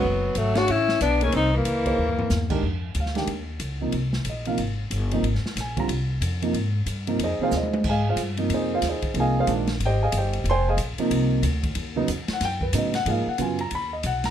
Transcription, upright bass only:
0.03 0.35 F#1 medium
0.36 0.67 G#1 medium
0.69 1.00 A1 medium
1.01 1.32 B1 medium
1.33 1.65 C2 medium
1.66 1.97 C#2 medium
1.98 2.30 D#2 medium
2.30 2.62 E2 medium
2.63 2.94 F2 medium
2.95 3.26 D2 medium
3.27 3.59 D#2 medium
3.60 3.92 C#2 medium
3.93 4.24 C2 medium
4.25 4.57 A#1 medium
4.58 4.90 G#1 medium
4.91 5.22 G1 medium
5.23 5.42 G#1 medium
5.44 muted upright bass stroke soft
5.56 5.87 A#1 medium
5.88 6.20 C2 medium
6.21 6.53 F2 medium
6.53 6.85 G#2 medium
6.86 7.18 G2 medium
7.19 7.38 F2 medium
7.39 muted upright bass stroke soft
7.52 7.84 D#2 medium
7.84 8.16 G#2 medium
8.16 8.48 G2 medium
8.49 8.81 F2 medium
8.82 9.01 D#2 medium
9.02 muted upright bass stroke soft
9.14 9.46 C2 medium
9.47 9.79 A#1 medium
9.80 10.12 G#1 medium
10.12 10.43 G1 medium
10.44 10.76 F1 medium
10.77 10.97 A#1 medium
10.98 muted upright bass stroke soft
11.10 11.42 C2 medium
11.42 11.75 D2 medium
11.75 12.07 D#2 medium
12.08 12.27 E2 medium
12.28 muted upright bass stroke soft
12.41 12.73 F#2 medium
12.73 13.05 A2 medium
13.06 13.25 G#2 medium
13.27 muted upright bass stroke soft
13.39 13.70 F#2 medium
13.71 14.03 D#2 medium
14.04 14.30 B1 medium

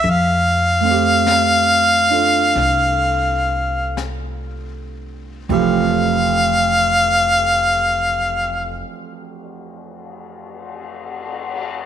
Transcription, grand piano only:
0.80 5.48 A3 soft
0.80 5.50 C4 soft
0.91 5.50 G4 medium
2.10 5.49 D4 soft
2.10 5.50 F4 soft
2.10 5.50 A4 soft
5.49 8.84 F2 medium
5.49 8.87 E3 medium
5.49 8.85 F3 medium
5.49 8.86 A3 medium
5.49 8.87 G4 medium

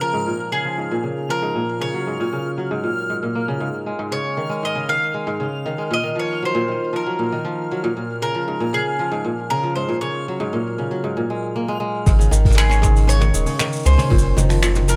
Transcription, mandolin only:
0.01 0.49 A#4 medium
0.52 1.32 G#4 medium
1.30 1.78 A#4 medium
1.81 2.54 C#5 medium
4.12 4.65 C#5 medium
4.65 4.91 D#5 medium
4.89 5.88 F5 medium
5.93 6.19 D#5 medium
6.19 6.45 C#5 medium
6.45 6.96 C5 medium
6.96 7.68 A#4 medium
8.22 8.75 A#4 medium
8.74 9.53 G#4 medium
9.50 9.75 A#4 medium
9.76 10.01 C5 medium
10.01 10.74 C#5 medium
12.58 13.06 G#4 medium
13.09 13.86 C#5 loud
13.86 14.89 C5 loud
14.89 14.96 A#4 medium

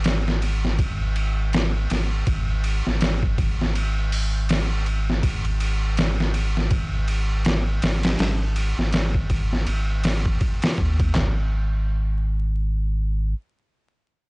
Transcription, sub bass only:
0.00 1.87 G#1 loud
1.91 2.24 G#1 medium
2.27 2.82 G#1 loud
2.87 5.21 G#1 medium
5.23 7.80 G#1 loud
7.82 8.16 G#1 medium
8.19 8.74 G#1 loud
8.78 9.66 G#1 medium
9.67 10.38 G#1 medium
10.78 11.12 D#2 loud
11.15 13.34 G#1 loud

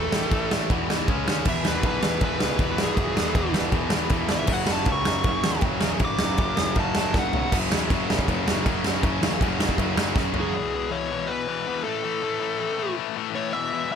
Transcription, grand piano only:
0.14 0.29 A1 medium
0.31 0.48 A1 medium
0.51 0.67 A1 medium
0.70 0.86 E1 medium
0.90 1.06 E2 medium
1.08 1.24 C#2 medium
1.27 1.43 D#2 medium
1.45 1.62 E1 medium
1.64 1.80 E1 medium
1.83 2.00 B1 medium
2.04 2.20 E2 medium
2.21 2.38 E1 medium
2.41 2.57 C#2 medium
2.59 2.75 E1 medium
2.79 2.95 C#1 medium
2.97 3.13 B0 loud
3.16 3.33 E1 medium
3.35 3.51 E1 medium
3.54 3.70 E1 loud
3.72 3.89 E1 loud
3.91 4.08 E2 medium
4.10 4.27 E1 medium
4.30 4.46 G#1 medium
4.49 4.65 F#1 loud
4.68 4.84 F#1 medium
4.87 5.03 C#2 loud
5.07 5.23 F#2 medium
5.24 5.41 F#1 medium
5.45 5.61 E2 medium
5.62 5.79 F#1 medium
5.83 5.99 E1 medium
6.00 6.17 C#1 medium
6.19 6.36 F#1 medium
6.38 6.55 F#1 medium
6.58 6.74 F#1 medium
6.76 6.92 F#1 medium
6.95 7.11 F#2 medium
7.14 7.30 F#1 medium
7.33 7.49 B1 medium
7.52 7.71 F#1 loud
7.71 7.89 E2 medium
7.90 8.08 F#1 medium
8.10 8.26 F#1 medium
8.28 8.46 F#1 loud
8.48 8.66 F#1 medium
8.66 9.02 F#2 medium
9.03 9.21 F#1 loud
9.21 9.40 E2 medium
9.41 9.56 F#1 loud
9.58 9.77 F#1 medium
9.78 9.93 F#1 loud
9.94 10.14 F#1 medium
10.16 10.52 F#2 loud

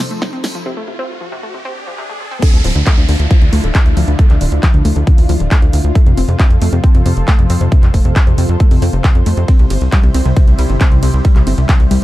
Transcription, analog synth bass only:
2.53 2.61 D2 medium
2.64 2.72 D1 loud
2.75 2.83 D2 medium
2.98 3.05 D2 medium
3.09 3.16 D2 loud
3.20 3.27 D2 medium
3.42 3.49 D2 medium
3.53 3.60 D2 loud
3.64 3.71 D1 medium
3.86 3.93 D2 medium
3.97 4.04 D2 loud
4.08 4.16 D2 medium
4.30 4.38 D2 medium
4.41 4.49 D1 loud
4.52 4.60 D2 medium
4.74 4.82 D2 medium
4.85 4.93 D2 loud
4.96 5.04 D2 medium
5.18 5.26 D2 medium
5.29 5.37 D2 loud
5.40 5.48 D1 medium
5.62 5.70 D2 medium
5.73 5.81 D2 loud
5.84 5.92 D2 medium
6.06 6.14 F2 medium
6.17 6.25 F1 loud
6.28 6.36 F2 medium
6.51 6.58 F2 medium
6.62 6.69 F2 loud
6.73 6.80 F2 medium
6.95 7.02 F2 medium
7.06 7.13 F2 loud
7.17 7.24 F1 medium
7.39 7.46 F2 medium
7.50 7.57 F2 loud
7.61 7.68 F2 loud
7.83 7.91 F2 medium
7.94 8.02 F1 loud
8.05 8.13 F2 medium
8.27 8.35 F2 medium
8.38 8.46 F2 loud
8.49 8.57 F2 medium
8.71 8.79 F2 medium
8.82 8.90 F2 loud
8.93 9.01 F1 medium
9.15 9.23 F2 medium
9.26 9.34 F2 loud
9.37 9.45 F2 medium
9.59 9.67 C2 medium
9.70 9.78 G1 loud
9.81 9.89 C2 medium
10.03 10.11 C2 medium
10.14 10.22 C2 loud
10.25 10.33 C2 medium
10.48 10.55 C2 medium
10.59 10.66 C2 loud
10.70 10.77 G1 medium
10.92 10.99 C2 medium
11.03 11.10 C2 loud
11.14 11.21 C2 medium
11.36 11.43 C2 medium
11.47 11.54 G1 loud
11.58 11.66 C2 medium
11.80 11.88 C2 medium
11.91 11.99 C2 loud

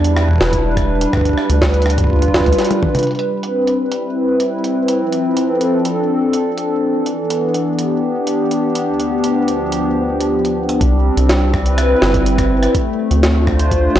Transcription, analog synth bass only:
0.00 0.34 E2 loud
0.41 1.06 E1 medium
1.50 2.27 D2 medium
2.46 2.54 D2 loud
10.81 11.10 C2 medium
11.17 11.95 C2 medium
12.02 12.68 G1 medium
13.11 13.89 D2 medium
13.95 14.00 A1 loud

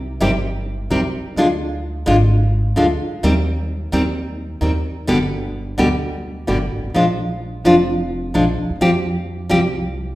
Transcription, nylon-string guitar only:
0.20 0.30 C3 medium
0.20 0.30 D#3 medium
0.20 0.30 G3 loud
0.20 0.30 C4 medium
0.20 0.30 G4 medium
0.90 1.00 C3 medium
0.90 1.00 D#3 medium
0.90 1.00 G3 medium
0.90 1.00 C4 medium
0.90 1.00 G4 medium
1.37 1.46 D3 medium
1.37 1.47 G#3 medium
1.37 1.47 D4 medium
1.37 1.47 F4 medium
2.06 2.15 D3 loud
2.06 2.16 G#3 medium
2.06 2.16 D4 loud
2.06 2.16 F4 loud
2.76 2.85 D3 medium
2.76 2.85 G#3 medium
2.76 2.86 D4 medium
2.76 2.86 F4 loud
3.23 3.32 D#3 medium
3.23 3.32 G3 loud
3.23 3.33 C4 medium
3.92 4.01 D#3 medium
3.92 4.02 G3 loud
3.92 4.02 C4 loud
4.61 4.70 D#3 medium
4.61 4.71 G3 medium
4.61 4.71 C4 medium
5.07 5.17 B2 medium
5.07 5.17 D3 loud
5.07 5.17 G3 medium
5.07 5.17 B3 medium
5.07 5.17 G4 medium
5.78 5.87 B2 medium
5.78 5.87 D3 medium
5.78 5.87 G3 medium
5.78 5.87 B3 loud
5.78 5.88 G4 medium
6.47 6.57 B2 medium
6.47 6.57 D3 medium
6.47 6.57 G3 medium
6.47 6.57 B3 medium
6.47 6.57 G4 medium
6.94 7.04 F3 medium
6.94 7.04 G#3 medium
6.94 7.04 D4 medium
6.94 7.04 F4 medium
7.65 7.74 F3 medium
7.65 7.74 G#3 medium
7.65 7.74 D4 loud
7.65 7.75 F4 medium
8.34 8.43 F3 medium
8.34 8.43 G#3 medium
8.34 8.44 D4 medium
8.34 8.44 F4 medium
8.81 8.90 F3 medium
8.81 8.90 G3 medium
8.81 8.90 C4 medium
8.81 8.90 G4 loud
9.49 9.59 F3 medium
9.49 9.59 G3 loud
9.49 9.59 C4 loud
9.49 9.59 G4 loud

